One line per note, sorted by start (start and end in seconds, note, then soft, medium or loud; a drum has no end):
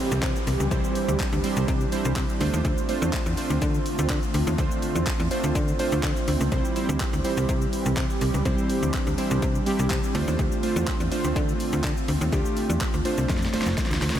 0.00 2.37 E3 medium
0.00 0.31 G3 medium
0.00 2.37 G3 medium
0.00 0.32 C4 medium
0.00 0.69 C4 medium
0.00 0.32 E4 medium
0.00 2.37 G4 medium
0.00 0.32 C5 loud
0.00 downlifter medium
0.11 0.19 C2 loud
0.11 shaker medium
0.23 0.32 C3 loud
0.23 kick loud
0.23 clap loud
0.23 closed hi-hat medium
0.23 shaker medium
0.36 shaker medium
0.47 0.56 C2 medium
0.47 open hi-hat medium
0.47 shaker medium
0.60 0.68 C#2 medium
0.60 shaker medium
0.71 0.80 C2 loud
0.71 1.32 G3 medium
0.71 1.33 C4 medium
0.71 2.39 D4 medium
0.71 1.33 E4 medium
0.71 1.33 C5 loud
0.71 kick loud
0.71 closed hi-hat medium
0.71 shaker medium
0.84 shaker medium
0.95 open hi-hat medium
0.95 shaker soft
1.08 1.16 D2 medium
1.08 shaker medium
1.20 kick loud
1.20 clap loud
1.20 closed hi-hat medium
1.20 shaker medium
1.32 1.40 D2 loud
1.32 shaker medium
1.44 1.85 G3 medium
1.44 1.85 C4 medium
1.44 1.85 E4 medium
1.44 1.85 C5 loud
1.44 open hi-hat medium
1.44 shaker medium
1.56 1.65 C2 loud
1.56 shaker medium
1.68 1.85 C3 loud
1.68 kick loud
1.68 closed hi-hat medium
1.68 shaker medium
1.81 shaker medium
1.92 2.41 G3 medium
1.92 2.41 C4 medium
1.92 2.41 E4 medium
1.92 2.40 C5 loud
1.92 open hi-hat medium
1.92 shaker medium
2.05 2.13 C2 loud
2.05 shaker medium
2.16 2.25 C3 loud
2.16 kick loud
2.16 clap loud
2.16 closed hi-hat medium
2.16 shaker medium
2.29 shaker medium
2.40 2.50 D2 loud
2.40 6.48 D3 medium
2.40 2.81 A3 loud
2.40 6.48 A3 medium
2.40 8.41 C4 medium
2.40 2.81 D4 medium
2.40 2.82 F4 medium
2.40 6.48 F4 medium
2.40 2.82 C5 loud
2.40 open hi-hat medium
2.40 shaker medium
2.53 2.61 D#2 medium
2.53 shaker medium
2.65 2.74 D2 loud
2.65 kick loud
2.65 closed hi-hat medium
2.65 shaker medium
2.78 shaker medium
2.89 3.30 A3 medium
2.89 3.30 D4 medium
2.89 3.30 F4 medium
2.89 3.30 C5 loud
2.89 open hi-hat medium
2.89 shaker soft
3.02 3.10 E2 loud
3.02 shaker medium
3.13 kick loud
3.13 clap loud
3.13 closed hi-hat medium
3.13 shaker medium
3.26 3.34 E2 medium
3.26 shaker medium
3.37 4.19 A3 medium
3.37 4.19 D4 medium
3.37 4.19 F4 medium
3.37 4.19 C5 loud
3.37 open hi-hat medium
3.37 shaker medium
3.50 3.58 D2 medium
3.50 shaker medium
3.62 3.79 D3 loud
3.62 kick loud
3.62 closed hi-hat medium
3.62 shaker medium
3.74 shaker medium
3.86 open hi-hat medium
3.86 shaker medium
3.98 4.07 D2 loud
3.98 shaker medium
4.10 4.19 D3 loud
4.10 kick loud
4.10 clap loud
4.10 closed hi-hat medium
4.10 shaker medium
4.23 shaker medium
4.34 4.43 D2 loud
4.34 open hi-hat medium
4.34 shaker medium
4.47 4.55 D#2 loud
4.47 shaker medium
4.58 4.67 D2 loud
4.58 5.20 A3 loud
4.58 5.20 D4 medium
4.58 5.20 F4 medium
4.58 5.20 C5 loud
4.58 kick loud
4.58 closed hi-hat medium
4.58 shaker medium
4.71 shaker medium
4.82 open hi-hat medium
4.82 shaker soft
4.95 5.03 E2 medium
4.95 shaker medium
5.07 kick loud
5.07 clap loud
5.07 closed hi-hat medium
5.07 shaker medium
5.20 5.28 E2 loud
5.20 shaker medium
5.31 5.72 A3 medium
5.31 5.72 D4 medium
5.31 5.72 F4 medium
5.31 5.72 C5 loud
5.31 open hi-hat medium
5.31 shaker medium
5.44 5.52 D2 loud
5.44 shaker medium
5.55 5.72 D3 loud
5.55 kick loud
5.55 closed hi-hat medium
5.55 shaker medium
5.68 shaker medium
5.79 6.40 A3 medium
5.79 6.41 D4 medium
5.79 6.41 F4 medium
5.79 6.41 C5 loud
5.79 open hi-hat medium
5.79 shaker medium
5.92 6.00 D2 loud
5.92 shaker medium
6.03 6.12 D3 loud
6.03 kick loud
6.03 clap loud
6.03 closed hi-hat medium
6.03 shaker medium
6.16 shaker medium
6.28 6.37 D2 medium
6.28 open hi-hat medium
6.28 shaker medium
6.41 6.48 C#2 medium
6.41 shaker medium
6.52 6.61 C2 loud
6.52 10.11 E3 medium
6.52 6.72 G3 loud
6.52 10.11 G3 medium
6.52 6.72 C4 medium
6.52 6.72 E4 medium
6.52 10.11 G4 medium
6.52 6.72 C5 loud
6.52 kick loud
6.52 closed hi-hat medium
6.52 shaker medium
6.65 shaker medium
6.76 7.17 G3 medium
6.76 7.17 C4 medium
6.76 7.17 E4 medium
6.76 7.17 C5 loud
6.76 open hi-hat medium
6.76 shaker soft
6.89 6.97 D2 loud
6.89 shaker medium
7.00 kick loud
7.00 clap loud
7.00 closed hi-hat medium
7.00 shaker medium
7.13 7.21 D2 medium
7.13 shaker medium
7.24 8.06 G3 medium
7.24 8.06 C4 medium
7.24 8.06 E4 medium
7.24 8.06 C5 loud
7.24 open hi-hat medium
7.24 shaker medium
7.37 7.45 C2 loud
7.37 shaker medium
7.49 7.66 C3 loud
7.49 kick loud
7.49 closed hi-hat medium
7.49 shaker medium
7.61 shaker medium
7.73 open hi-hat medium
7.73 shaker medium
7.86 7.94 C2 loud
7.86 shaker medium
7.97 8.06 C3 loud
7.97 kick loud
7.97 clap loud
7.97 closed hi-hat medium
7.97 shaker medium
8.10 shaker medium
8.21 8.30 C2 medium
8.21 open hi-hat medium
8.21 shaker medium
8.34 8.42 C#2 medium
8.34 shaker medium
8.45 8.54 C2 loud
8.45 9.07 G3 medium
8.45 9.07 C4 medium
8.45 10.13 D4 medium
8.45 9.07 E4 medium
8.45 9.07 C5 loud
8.45 kick loud
8.45 closed hi-hat medium
8.45 shaker medium
8.58 shaker medium
8.70 open hi-hat medium
8.70 shaker soft
8.83 8.90 D2 medium
8.83 shaker medium
8.94 kick loud
8.94 clap loud
8.94 closed hi-hat medium
8.94 shaker medium
9.07 9.15 D2 medium
9.07 shaker medium
9.18 9.59 G3 medium
9.18 9.59 C4 medium
9.18 9.59 E4 medium
9.18 9.59 C5 loud
9.18 open hi-hat medium
9.18 shaker medium
9.31 9.39 C2 loud
9.31 shaker medium
9.42 9.59 C3 loud
9.42 kick loud
9.42 closed hi-hat medium
9.42 shaker medium
9.55 shaker medium
9.66 10.15 G3 loud
9.66 10.15 C4 medium
9.66 10.15 E4 medium
9.66 10.15 G4 loud
9.66 open hi-hat medium
9.66 shaker medium
9.79 9.87 C2 medium
9.79 shaker medium
9.90 9.99 C3 loud
9.90 kick loud
9.90 clap loud
9.90 closed hi-hat medium
9.90 shaker medium
10.03 shaker medium
10.15 10.24 D2 loud
10.15 14.20 D3 medium
10.15 10.56 A3 loud
10.15 14.20 A3 medium
10.15 14.20 C4 medium
10.15 10.56 D4 medium
10.15 10.56 F4 medium
10.15 14.20 F4 medium
10.15 10.56 C5 loud
10.15 open hi-hat medium
10.15 shaker medium
10.28 10.36 D#2 medium
10.28 shaker medium
10.39 10.48 D2 loud
10.39 kick loud
10.39 closed hi-hat medium
10.39 shaker medium
10.52 shaker medium
10.63 11.04 A3 medium
10.63 11.04 D4 medium
10.63 11.04 F4 medium
10.63 11.04 C5 loud
10.63 open hi-hat medium
10.63 shaker soft
10.76 10.84 E2 loud
10.76 shaker medium
10.87 kick loud
10.87 clap loud
10.87 closed hi-hat medium
10.87 shaker medium
11.00 11.08 E2 loud
11.00 shaker medium
11.11 11.93 A3 medium
11.11 11.93 D4 medium
11.11 11.93 F4 medium
11.11 11.93 C5 loud
11.11 open hi-hat medium
11.11 shaker medium
11.24 11.32 D2 medium
11.24 shaker medium
11.36 11.53 D3 loud
11.36 kick loud
11.36 closed hi-hat medium
11.36 shaker medium
11.49 shaker medium
11.60 open hi-hat medium
11.60 shaker medium
11.73 11.81 D2 loud
11.73 shaker medium
11.84 11.93 D3 loud
11.84 kick loud
11.84 clap loud
11.84 closed hi-hat medium
11.84 shaker medium
11.97 shaker medium
12.08 12.17 D2 loud
12.08 open hi-hat medium
12.08 shaker medium
12.21 12.29 D#2 loud
12.21 shaker medium
12.32 12.42 D2 loud
12.32 12.94 A3 loud
12.32 12.94 D4 medium
12.32 12.94 F4 medium
12.32 12.94 G4 loud
12.32 kick loud
12.32 closed hi-hat medium
12.32 shaker medium
12.45 shaker medium
12.57 open hi-hat medium
12.57 shaker soft
12.70 12.77 E2 medium
12.70 shaker medium
12.81 kick loud
12.81 clap loud
12.81 closed hi-hat medium
12.81 shaker medium
12.94 13.02 D2 medium
12.94 shaker medium
13.05 13.46 A3 medium
13.05 13.46 D4 medium
13.05 13.46 F4 medium
13.05 13.46 C5 loud
13.05 open hi-hat medium
13.05 shaker medium
13.18 13.26 C2 medium
13.18 shaker medium
13.29 13.46 F2 loud
13.29 kick loud
13.29 snare medium
13.29 closed hi-hat medium
13.29 shaker medium
13.37 snare medium
13.42 snare medium
13.42 shaker medium
13.53 13.59 F1 medium
13.53 14.15 A3 medium
13.53 14.15 D4 medium
13.53 14.15 F4 medium
13.53 14.15 C5 loud
13.53 snare medium
13.53 open hi-hat medium
13.53 shaker medium
13.62 snare medium
13.66 13.74 F1 loud
13.66 snare medium
13.66 shaker medium
13.77 kick loud
13.77 snare medium
13.77 closed hi-hat medium
13.77 shaker medium
13.86 snare medium
13.90 13.98 D2 medium
13.90 snare loud
13.90 shaker medium
14.02 14.11 D2 loud
14.02 snare medium
14.02 open hi-hat medium
14.02 shaker medium
14.10 snare loud
14.15 14.20 C#2 medium
14.15 shaker medium